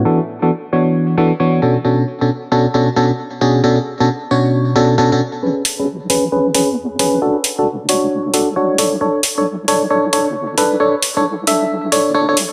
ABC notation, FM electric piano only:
X:1
M:4/4
L:1/16
Q:"Swing 16ths" 1/4=134
K:Bdor
V:1 name="FM electric piano"
[E,B,DFA] z2 [E,B,DFA] z2 [E,B,DFc]4 [E,B,DFA] z [E,B,DFc]2 [B,,CDFA] z | [B,,CDFA]2 z [B,,CDFA] z2 [B,,CDFA] z [B,,CDFA] z [B,,CDFA] z3 [B,,CDFG]2 | [B,,CDFA] z2 [B,,CDFA] z2 [B,,CDFc]4 [B,,CDFA]2 [B,,CDFA] [B,,CDFA] z2 | [CGB]2 z [CGB] z2 [CGB] z [CGB] z [CGB] z3 [CGB]2 |
[DFA] z2 [DFA] z2 [DFc]4 [DFA] z [DFc]2 [DAc] z | [DAc]2 z [DAc] z2 [DAc] z [DAc] z [DAc] z3 [DAB]2 | [DAc] z2 [DAc] z2 [DAe]4 [DAc]2 [DAc] [DAc] z2 |]